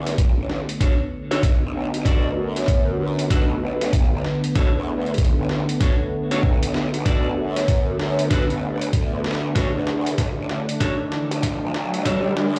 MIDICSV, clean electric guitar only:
0, 0, Header, 1, 2, 480
1, 0, Start_track
1, 0, Key_signature, 2, "minor"
1, 0, Tempo, 625000
1, 1581, Time_signature, 4, 2, 24, 8
1, 9669, End_track
2, 0, Start_track
2, 0, Title_t, "Clean electric guitar"
2, 0, Program_c, 0, 27
2, 618, Note_on_c, 0, 62, 85
2, 621, Note_on_c, 0, 66, 67
2, 624, Note_on_c, 0, 69, 66
2, 628, Note_on_c, 0, 73, 74
2, 728, Note_off_c, 0, 62, 0
2, 728, Note_off_c, 0, 66, 0
2, 728, Note_off_c, 0, 69, 0
2, 728, Note_off_c, 0, 73, 0
2, 1006, Note_on_c, 0, 73, 82
2, 1011, Note_on_c, 0, 69, 63
2, 1014, Note_on_c, 0, 66, 65
2, 1019, Note_on_c, 0, 62, 70
2, 1075, Note_off_c, 0, 62, 0
2, 1075, Note_off_c, 0, 66, 0
2, 1075, Note_off_c, 0, 69, 0
2, 1075, Note_off_c, 0, 73, 0
2, 1574, Note_on_c, 0, 62, 64
2, 1579, Note_on_c, 0, 66, 62
2, 1583, Note_on_c, 0, 69, 64
2, 1588, Note_on_c, 0, 74, 71
2, 1743, Note_off_c, 0, 62, 0
2, 1743, Note_off_c, 0, 66, 0
2, 1743, Note_off_c, 0, 69, 0
2, 1743, Note_off_c, 0, 74, 0
2, 2537, Note_on_c, 0, 62, 98
2, 2541, Note_on_c, 0, 66, 85
2, 2544, Note_on_c, 0, 69, 72
2, 2547, Note_on_c, 0, 71, 89
2, 2648, Note_off_c, 0, 62, 0
2, 2648, Note_off_c, 0, 66, 0
2, 2648, Note_off_c, 0, 69, 0
2, 2648, Note_off_c, 0, 71, 0
2, 3497, Note_on_c, 0, 62, 95
2, 3500, Note_on_c, 0, 66, 82
2, 3503, Note_on_c, 0, 69, 78
2, 3506, Note_on_c, 0, 73, 88
2, 3607, Note_off_c, 0, 69, 0
2, 3608, Note_off_c, 0, 62, 0
2, 3608, Note_off_c, 0, 66, 0
2, 3608, Note_off_c, 0, 73, 0
2, 4457, Note_on_c, 0, 62, 81
2, 4462, Note_on_c, 0, 66, 74
2, 4466, Note_on_c, 0, 69, 73
2, 4469, Note_on_c, 0, 73, 81
2, 4568, Note_off_c, 0, 62, 0
2, 4568, Note_off_c, 0, 66, 0
2, 4568, Note_off_c, 0, 73, 0
2, 4569, Note_off_c, 0, 69, 0
2, 4848, Note_on_c, 0, 73, 84
2, 4852, Note_on_c, 0, 69, 65
2, 4854, Note_on_c, 0, 66, 66
2, 4857, Note_on_c, 0, 62, 66
2, 4916, Note_off_c, 0, 62, 0
2, 4916, Note_off_c, 0, 66, 0
2, 4916, Note_off_c, 0, 69, 0
2, 4916, Note_off_c, 0, 73, 0
2, 5418, Note_on_c, 0, 62, 72
2, 5420, Note_on_c, 0, 66, 67
2, 5424, Note_on_c, 0, 69, 68
2, 5427, Note_on_c, 0, 74, 76
2, 5583, Note_off_c, 0, 66, 0
2, 5583, Note_off_c, 0, 74, 0
2, 5584, Note_off_c, 0, 62, 0
2, 5584, Note_off_c, 0, 69, 0
2, 6376, Note_on_c, 0, 62, 90
2, 6381, Note_on_c, 0, 66, 79
2, 6384, Note_on_c, 0, 69, 77
2, 6389, Note_on_c, 0, 71, 93
2, 6488, Note_off_c, 0, 62, 0
2, 6488, Note_off_c, 0, 66, 0
2, 6488, Note_off_c, 0, 69, 0
2, 6488, Note_off_c, 0, 71, 0
2, 7334, Note_on_c, 0, 62, 82
2, 7339, Note_on_c, 0, 66, 81
2, 7343, Note_on_c, 0, 69, 69
2, 7348, Note_on_c, 0, 73, 73
2, 7447, Note_off_c, 0, 62, 0
2, 7447, Note_off_c, 0, 66, 0
2, 7447, Note_off_c, 0, 69, 0
2, 7447, Note_off_c, 0, 73, 0
2, 8297, Note_on_c, 0, 62, 93
2, 8299, Note_on_c, 0, 66, 73
2, 8303, Note_on_c, 0, 69, 65
2, 8307, Note_on_c, 0, 73, 83
2, 8407, Note_off_c, 0, 66, 0
2, 8408, Note_off_c, 0, 62, 0
2, 8408, Note_off_c, 0, 69, 0
2, 8408, Note_off_c, 0, 73, 0
2, 9256, Note_on_c, 0, 62, 89
2, 9260, Note_on_c, 0, 66, 75
2, 9263, Note_on_c, 0, 69, 78
2, 9267, Note_on_c, 0, 73, 87
2, 9368, Note_off_c, 0, 62, 0
2, 9368, Note_off_c, 0, 66, 0
2, 9368, Note_off_c, 0, 69, 0
2, 9368, Note_off_c, 0, 73, 0
2, 9669, End_track
0, 0, End_of_file